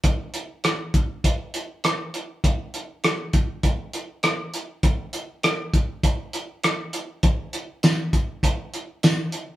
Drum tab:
HH |xxxxxxxx|xxxxxxxx|xxxxxxxx|xxxxxxxx|
TB |--------|--------|--------|--x---x-|
SD |--r---r-|--r---r-|--r---r-|--o---o-|
BD |o--oo---|o--oo---|o--oo---|o--oo---|